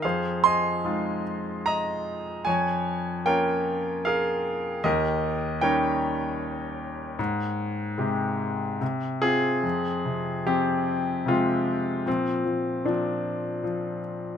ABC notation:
X:1
M:3/4
L:1/8
Q:1/4=75
K:Fm
V:1 name="Grand piano"
[Acf] [eac']3 [eb]2 | [da]2 [Bdg]2 [ABf]2 | [GBe]2 [Bdg]4- | [Bdg]4 z [CFA]- |
[CFA]2 [CG]2 [A,CF]2 | [F,C]2 [F,=D]3 z |]
V:2 name="Grand piano" clef=bass
F,,2 [A,EF]4 | F,,2 [B,DF]4 | E,,2 [G,DE]4 | A,,2 [C,A,G]2 C,2 |
F,, C, F,,2 C,2 | B,, F, B,,2 F,2 |]